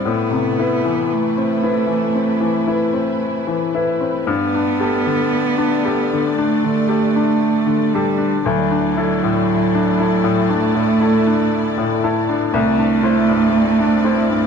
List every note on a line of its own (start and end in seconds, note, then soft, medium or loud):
0.00 0.11 G2 soft
0.00 0.12 C4 soft
0.00 0.11 E4 soft
0.00 0.12 D5 soft
0.06 2.13 A2 soft
0.06 4.29 A3 soft
0.06 1.14 B3 medium
0.06 4.25 E4 soft
0.06 4.29 B4 soft
0.31 0.75 C3 soft
0.59 0.84 E4 soft
0.59 0.84 B4 soft
0.85 1.70 E3 soft
1.13 3.23 A3 soft
1.38 1.81 C4 soft
1.63 1.88 E4 soft
1.63 1.88 B4 soft
1.87 2.32 E3 soft
2.15 2.59 C4 soft
2.41 2.85 E3 soft
2.67 2.93 E4 soft
2.67 2.93 B4 soft
2.93 3.80 C4 soft
3.47 3.91 E3 soft
3.75 3.99 E4 soft
3.75 3.99 B4 soft
4.01 4.28 C4 soft
4.27 6.33 G2 medium
4.27 6.33 B3 medium
4.31 8.43 A3 soft
4.31 8.47 D4 soft
4.31 8.44 D5 soft
4.54 4.97 D4 soft
4.80 5.04 G4 soft
4.80 5.05 A4 soft
5.06 5.90 D3 soft
5.58 6.01 D4 soft
5.85 6.09 G4 soft
5.85 6.09 A4 soft
6.13 6.54 D3 soft
6.38 7.96 A3 medium
6.38 6.80 D4 soft
6.64 7.06 D3 soft
6.89 7.13 G4 soft
6.89 7.13 A4 soft
7.16 7.99 D4 soft
7.67 8.09 D3 soft
7.94 8.46 G3 medium
7.94 8.18 G4 soft
7.94 8.18 A4 soft
8.18 8.45 D4 soft
8.45 10.47 D2 medium
8.45 10.53 F#3 medium
8.45 12.49 A3 soft
8.45 12.51 E4 medium
8.45 12.50 D5 soft
8.71 9.13 D4 soft
8.97 9.20 E4 soft
8.97 9.20 A4 soft
9.24 10.05 A2 soft
9.75 10.15 D4 soft
10.00 10.23 E4 soft
10.00 10.23 A4 soft
10.24 10.65 A2 soft
10.49 12.04 A3 medium
10.49 10.91 D4 soft
10.75 11.17 A2 soft
11.00 11.24 E4 soft
11.00 11.24 A4 soft
11.27 12.08 D4 soft
11.78 12.18 A2 soft
12.04 12.26 E4 soft
12.04 12.26 A4 soft
12.29 12.54 D4 soft
12.51 14.47 C2 medium
12.51 14.47 A3 medium
12.51 14.47 C4 medium
12.51 14.47 E4 soft
12.51 14.47 D5 medium
12.79 13.19 D4 soft
13.03 13.26 E4 soft
13.03 13.27 C5 soft
13.29 14.11 G2 soft
13.79 14.21 D4 soft
14.04 14.28 E4 soft
14.04 14.28 C5 soft
14.29 14.47 G2 soft